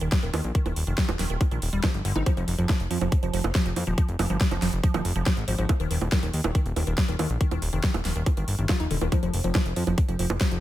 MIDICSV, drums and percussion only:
0, 0, Header, 1, 2, 480
1, 0, Start_track
1, 0, Tempo, 428571
1, 616, Time_signature, 4, 2, 24, 8
1, 11873, End_track
2, 0, Start_track
2, 0, Title_t, "Drums"
2, 16, Note_on_c, 9, 42, 40
2, 128, Note_off_c, 9, 42, 0
2, 135, Note_on_c, 9, 36, 127
2, 136, Note_on_c, 9, 38, 122
2, 136, Note_on_c, 9, 42, 62
2, 247, Note_off_c, 9, 36, 0
2, 248, Note_off_c, 9, 38, 0
2, 248, Note_off_c, 9, 42, 0
2, 255, Note_on_c, 9, 42, 39
2, 367, Note_off_c, 9, 42, 0
2, 376, Note_on_c, 9, 46, 114
2, 376, Note_on_c, 9, 60, 79
2, 488, Note_off_c, 9, 46, 0
2, 488, Note_off_c, 9, 60, 0
2, 496, Note_on_c, 9, 42, 39
2, 608, Note_off_c, 9, 42, 0
2, 615, Note_on_c, 9, 36, 118
2, 616, Note_on_c, 9, 42, 65
2, 727, Note_off_c, 9, 36, 0
2, 728, Note_off_c, 9, 42, 0
2, 736, Note_on_c, 9, 42, 38
2, 736, Note_on_c, 9, 60, 39
2, 848, Note_off_c, 9, 42, 0
2, 848, Note_off_c, 9, 60, 0
2, 855, Note_on_c, 9, 46, 113
2, 967, Note_off_c, 9, 46, 0
2, 976, Note_on_c, 9, 42, 36
2, 1088, Note_off_c, 9, 42, 0
2, 1095, Note_on_c, 9, 36, 119
2, 1096, Note_on_c, 9, 38, 123
2, 1096, Note_on_c, 9, 42, 64
2, 1207, Note_off_c, 9, 36, 0
2, 1208, Note_off_c, 9, 38, 0
2, 1208, Note_off_c, 9, 42, 0
2, 1216, Note_on_c, 9, 42, 39
2, 1216, Note_on_c, 9, 60, 78
2, 1328, Note_off_c, 9, 42, 0
2, 1328, Note_off_c, 9, 60, 0
2, 1336, Note_on_c, 9, 38, 61
2, 1336, Note_on_c, 9, 46, 111
2, 1448, Note_off_c, 9, 38, 0
2, 1448, Note_off_c, 9, 46, 0
2, 1456, Note_on_c, 9, 42, 40
2, 1568, Note_off_c, 9, 42, 0
2, 1576, Note_on_c, 9, 36, 121
2, 1576, Note_on_c, 9, 42, 63
2, 1576, Note_on_c, 9, 60, 38
2, 1688, Note_off_c, 9, 36, 0
2, 1688, Note_off_c, 9, 42, 0
2, 1688, Note_off_c, 9, 60, 0
2, 1696, Note_on_c, 9, 42, 41
2, 1808, Note_off_c, 9, 42, 0
2, 1816, Note_on_c, 9, 46, 108
2, 1928, Note_off_c, 9, 46, 0
2, 1936, Note_on_c, 9, 42, 40
2, 2048, Note_off_c, 9, 42, 0
2, 2055, Note_on_c, 9, 36, 117
2, 2056, Note_on_c, 9, 38, 112
2, 2056, Note_on_c, 9, 42, 61
2, 2056, Note_on_c, 9, 60, 78
2, 2167, Note_off_c, 9, 36, 0
2, 2168, Note_off_c, 9, 38, 0
2, 2168, Note_off_c, 9, 42, 0
2, 2168, Note_off_c, 9, 60, 0
2, 2175, Note_on_c, 9, 42, 40
2, 2287, Note_off_c, 9, 42, 0
2, 2296, Note_on_c, 9, 46, 112
2, 2408, Note_off_c, 9, 46, 0
2, 2416, Note_on_c, 9, 42, 39
2, 2416, Note_on_c, 9, 60, 38
2, 2528, Note_off_c, 9, 42, 0
2, 2528, Note_off_c, 9, 60, 0
2, 2535, Note_on_c, 9, 36, 114
2, 2536, Note_on_c, 9, 42, 67
2, 2536, Note_on_c, 9, 60, 39
2, 2647, Note_off_c, 9, 36, 0
2, 2648, Note_off_c, 9, 42, 0
2, 2648, Note_off_c, 9, 60, 0
2, 2656, Note_on_c, 9, 42, 38
2, 2768, Note_off_c, 9, 42, 0
2, 2775, Note_on_c, 9, 46, 107
2, 2887, Note_off_c, 9, 46, 0
2, 2896, Note_on_c, 9, 42, 38
2, 3008, Note_off_c, 9, 42, 0
2, 3015, Note_on_c, 9, 36, 122
2, 3016, Note_on_c, 9, 38, 110
2, 3016, Note_on_c, 9, 42, 63
2, 3016, Note_on_c, 9, 60, 75
2, 3127, Note_off_c, 9, 36, 0
2, 3128, Note_off_c, 9, 38, 0
2, 3128, Note_off_c, 9, 42, 0
2, 3128, Note_off_c, 9, 60, 0
2, 3136, Note_on_c, 9, 42, 39
2, 3248, Note_off_c, 9, 42, 0
2, 3255, Note_on_c, 9, 46, 101
2, 3367, Note_off_c, 9, 46, 0
2, 3376, Note_on_c, 9, 42, 38
2, 3376, Note_on_c, 9, 60, 42
2, 3488, Note_off_c, 9, 42, 0
2, 3488, Note_off_c, 9, 60, 0
2, 3495, Note_on_c, 9, 36, 120
2, 3495, Note_on_c, 9, 42, 65
2, 3607, Note_off_c, 9, 36, 0
2, 3607, Note_off_c, 9, 42, 0
2, 3615, Note_on_c, 9, 42, 40
2, 3727, Note_off_c, 9, 42, 0
2, 3735, Note_on_c, 9, 46, 104
2, 3847, Note_off_c, 9, 46, 0
2, 3855, Note_on_c, 9, 42, 39
2, 3855, Note_on_c, 9, 60, 82
2, 3967, Note_off_c, 9, 42, 0
2, 3967, Note_off_c, 9, 60, 0
2, 3975, Note_on_c, 9, 36, 118
2, 3975, Note_on_c, 9, 38, 120
2, 3975, Note_on_c, 9, 42, 64
2, 4087, Note_off_c, 9, 36, 0
2, 4087, Note_off_c, 9, 38, 0
2, 4087, Note_off_c, 9, 42, 0
2, 4096, Note_on_c, 9, 42, 42
2, 4208, Note_off_c, 9, 42, 0
2, 4215, Note_on_c, 9, 46, 106
2, 4215, Note_on_c, 9, 60, 41
2, 4327, Note_off_c, 9, 46, 0
2, 4327, Note_off_c, 9, 60, 0
2, 4336, Note_on_c, 9, 42, 39
2, 4448, Note_off_c, 9, 42, 0
2, 4455, Note_on_c, 9, 36, 114
2, 4455, Note_on_c, 9, 42, 67
2, 4567, Note_off_c, 9, 36, 0
2, 4567, Note_off_c, 9, 42, 0
2, 4575, Note_on_c, 9, 42, 41
2, 4687, Note_off_c, 9, 42, 0
2, 4695, Note_on_c, 9, 46, 107
2, 4695, Note_on_c, 9, 60, 82
2, 4807, Note_off_c, 9, 46, 0
2, 4807, Note_off_c, 9, 60, 0
2, 4816, Note_on_c, 9, 42, 40
2, 4928, Note_off_c, 9, 42, 0
2, 4935, Note_on_c, 9, 36, 116
2, 4936, Note_on_c, 9, 38, 114
2, 4936, Note_on_c, 9, 42, 65
2, 5047, Note_off_c, 9, 36, 0
2, 5048, Note_off_c, 9, 38, 0
2, 5048, Note_off_c, 9, 42, 0
2, 5056, Note_on_c, 9, 42, 41
2, 5056, Note_on_c, 9, 60, 43
2, 5168, Note_off_c, 9, 42, 0
2, 5168, Note_off_c, 9, 60, 0
2, 5175, Note_on_c, 9, 38, 57
2, 5175, Note_on_c, 9, 46, 102
2, 5287, Note_off_c, 9, 38, 0
2, 5287, Note_off_c, 9, 46, 0
2, 5296, Note_on_c, 9, 42, 41
2, 5408, Note_off_c, 9, 42, 0
2, 5415, Note_on_c, 9, 36, 113
2, 5416, Note_on_c, 9, 42, 70
2, 5527, Note_off_c, 9, 36, 0
2, 5528, Note_off_c, 9, 42, 0
2, 5536, Note_on_c, 9, 42, 41
2, 5536, Note_on_c, 9, 60, 89
2, 5648, Note_off_c, 9, 42, 0
2, 5648, Note_off_c, 9, 60, 0
2, 5656, Note_on_c, 9, 46, 103
2, 5768, Note_off_c, 9, 46, 0
2, 5776, Note_on_c, 9, 42, 41
2, 5888, Note_off_c, 9, 42, 0
2, 5895, Note_on_c, 9, 36, 111
2, 5896, Note_on_c, 9, 38, 115
2, 5896, Note_on_c, 9, 42, 65
2, 5896, Note_on_c, 9, 60, 43
2, 6007, Note_off_c, 9, 36, 0
2, 6008, Note_off_c, 9, 38, 0
2, 6008, Note_off_c, 9, 42, 0
2, 6008, Note_off_c, 9, 60, 0
2, 6016, Note_on_c, 9, 42, 41
2, 6128, Note_off_c, 9, 42, 0
2, 6135, Note_on_c, 9, 46, 106
2, 6247, Note_off_c, 9, 46, 0
2, 6256, Note_on_c, 9, 42, 42
2, 6368, Note_off_c, 9, 42, 0
2, 6375, Note_on_c, 9, 36, 109
2, 6375, Note_on_c, 9, 42, 69
2, 6375, Note_on_c, 9, 60, 87
2, 6487, Note_off_c, 9, 36, 0
2, 6487, Note_off_c, 9, 42, 0
2, 6487, Note_off_c, 9, 60, 0
2, 6496, Note_on_c, 9, 42, 41
2, 6608, Note_off_c, 9, 42, 0
2, 6616, Note_on_c, 9, 46, 106
2, 6728, Note_off_c, 9, 46, 0
2, 6736, Note_on_c, 9, 42, 42
2, 6736, Note_on_c, 9, 60, 42
2, 6848, Note_off_c, 9, 42, 0
2, 6848, Note_off_c, 9, 60, 0
2, 6855, Note_on_c, 9, 36, 113
2, 6856, Note_on_c, 9, 38, 115
2, 6856, Note_on_c, 9, 42, 69
2, 6967, Note_off_c, 9, 36, 0
2, 6968, Note_off_c, 9, 38, 0
2, 6968, Note_off_c, 9, 42, 0
2, 6976, Note_on_c, 9, 42, 41
2, 7088, Note_off_c, 9, 42, 0
2, 7095, Note_on_c, 9, 46, 98
2, 7207, Note_off_c, 9, 46, 0
2, 7216, Note_on_c, 9, 42, 42
2, 7216, Note_on_c, 9, 60, 84
2, 7328, Note_off_c, 9, 42, 0
2, 7328, Note_off_c, 9, 60, 0
2, 7335, Note_on_c, 9, 36, 113
2, 7335, Note_on_c, 9, 42, 71
2, 7447, Note_off_c, 9, 36, 0
2, 7447, Note_off_c, 9, 42, 0
2, 7456, Note_on_c, 9, 42, 44
2, 7568, Note_off_c, 9, 42, 0
2, 7576, Note_on_c, 9, 46, 98
2, 7576, Note_on_c, 9, 60, 43
2, 7688, Note_off_c, 9, 46, 0
2, 7688, Note_off_c, 9, 60, 0
2, 7695, Note_on_c, 9, 42, 45
2, 7807, Note_off_c, 9, 42, 0
2, 7815, Note_on_c, 9, 36, 112
2, 7815, Note_on_c, 9, 38, 118
2, 7815, Note_on_c, 9, 42, 68
2, 7927, Note_off_c, 9, 36, 0
2, 7927, Note_off_c, 9, 38, 0
2, 7927, Note_off_c, 9, 42, 0
2, 7936, Note_on_c, 9, 42, 43
2, 8048, Note_off_c, 9, 42, 0
2, 8055, Note_on_c, 9, 46, 101
2, 8055, Note_on_c, 9, 60, 88
2, 8167, Note_off_c, 9, 46, 0
2, 8167, Note_off_c, 9, 60, 0
2, 8175, Note_on_c, 9, 42, 42
2, 8287, Note_off_c, 9, 42, 0
2, 8295, Note_on_c, 9, 36, 113
2, 8295, Note_on_c, 9, 42, 72
2, 8407, Note_off_c, 9, 36, 0
2, 8407, Note_off_c, 9, 42, 0
2, 8415, Note_on_c, 9, 42, 44
2, 8415, Note_on_c, 9, 60, 44
2, 8527, Note_off_c, 9, 42, 0
2, 8527, Note_off_c, 9, 60, 0
2, 8535, Note_on_c, 9, 46, 105
2, 8647, Note_off_c, 9, 46, 0
2, 8656, Note_on_c, 9, 42, 40
2, 8768, Note_off_c, 9, 42, 0
2, 8776, Note_on_c, 9, 36, 117
2, 8776, Note_on_c, 9, 38, 116
2, 8776, Note_on_c, 9, 42, 72
2, 8888, Note_off_c, 9, 36, 0
2, 8888, Note_off_c, 9, 38, 0
2, 8888, Note_off_c, 9, 42, 0
2, 8896, Note_on_c, 9, 42, 41
2, 8896, Note_on_c, 9, 60, 82
2, 9008, Note_off_c, 9, 42, 0
2, 9008, Note_off_c, 9, 60, 0
2, 9016, Note_on_c, 9, 38, 62
2, 9016, Note_on_c, 9, 46, 103
2, 9128, Note_off_c, 9, 38, 0
2, 9128, Note_off_c, 9, 46, 0
2, 9136, Note_on_c, 9, 42, 44
2, 9248, Note_off_c, 9, 42, 0
2, 9255, Note_on_c, 9, 36, 109
2, 9256, Note_on_c, 9, 42, 72
2, 9256, Note_on_c, 9, 60, 43
2, 9367, Note_off_c, 9, 36, 0
2, 9368, Note_off_c, 9, 42, 0
2, 9368, Note_off_c, 9, 60, 0
2, 9376, Note_on_c, 9, 42, 43
2, 9488, Note_off_c, 9, 42, 0
2, 9495, Note_on_c, 9, 46, 105
2, 9607, Note_off_c, 9, 46, 0
2, 9615, Note_on_c, 9, 42, 43
2, 9727, Note_off_c, 9, 42, 0
2, 9735, Note_on_c, 9, 36, 116
2, 9735, Note_on_c, 9, 38, 120
2, 9735, Note_on_c, 9, 42, 68
2, 9735, Note_on_c, 9, 60, 82
2, 9847, Note_off_c, 9, 36, 0
2, 9847, Note_off_c, 9, 38, 0
2, 9847, Note_off_c, 9, 42, 0
2, 9847, Note_off_c, 9, 60, 0
2, 9855, Note_on_c, 9, 42, 43
2, 9967, Note_off_c, 9, 42, 0
2, 9976, Note_on_c, 9, 46, 98
2, 10088, Note_off_c, 9, 46, 0
2, 10096, Note_on_c, 9, 42, 44
2, 10096, Note_on_c, 9, 60, 41
2, 10208, Note_off_c, 9, 42, 0
2, 10208, Note_off_c, 9, 60, 0
2, 10215, Note_on_c, 9, 36, 111
2, 10216, Note_on_c, 9, 42, 72
2, 10216, Note_on_c, 9, 60, 39
2, 10327, Note_off_c, 9, 36, 0
2, 10328, Note_off_c, 9, 42, 0
2, 10328, Note_off_c, 9, 60, 0
2, 10336, Note_on_c, 9, 42, 42
2, 10448, Note_off_c, 9, 42, 0
2, 10456, Note_on_c, 9, 46, 104
2, 10568, Note_off_c, 9, 46, 0
2, 10576, Note_on_c, 9, 42, 42
2, 10688, Note_off_c, 9, 42, 0
2, 10695, Note_on_c, 9, 36, 120
2, 10696, Note_on_c, 9, 38, 120
2, 10696, Note_on_c, 9, 42, 71
2, 10696, Note_on_c, 9, 60, 83
2, 10807, Note_off_c, 9, 36, 0
2, 10808, Note_off_c, 9, 38, 0
2, 10808, Note_off_c, 9, 42, 0
2, 10808, Note_off_c, 9, 60, 0
2, 10816, Note_on_c, 9, 42, 43
2, 10928, Note_off_c, 9, 42, 0
2, 10935, Note_on_c, 9, 46, 108
2, 11047, Note_off_c, 9, 46, 0
2, 11055, Note_on_c, 9, 42, 43
2, 11055, Note_on_c, 9, 60, 40
2, 11167, Note_off_c, 9, 42, 0
2, 11167, Note_off_c, 9, 60, 0
2, 11175, Note_on_c, 9, 36, 117
2, 11175, Note_on_c, 9, 42, 73
2, 11287, Note_off_c, 9, 36, 0
2, 11287, Note_off_c, 9, 42, 0
2, 11296, Note_on_c, 9, 42, 43
2, 11408, Note_off_c, 9, 42, 0
2, 11415, Note_on_c, 9, 46, 108
2, 11527, Note_off_c, 9, 46, 0
2, 11536, Note_on_c, 9, 42, 42
2, 11536, Note_on_c, 9, 60, 83
2, 11648, Note_off_c, 9, 42, 0
2, 11648, Note_off_c, 9, 60, 0
2, 11655, Note_on_c, 9, 36, 117
2, 11656, Note_on_c, 9, 38, 125
2, 11656, Note_on_c, 9, 42, 73
2, 11767, Note_off_c, 9, 36, 0
2, 11768, Note_off_c, 9, 38, 0
2, 11768, Note_off_c, 9, 42, 0
2, 11776, Note_on_c, 9, 42, 43
2, 11873, Note_off_c, 9, 42, 0
2, 11873, End_track
0, 0, End_of_file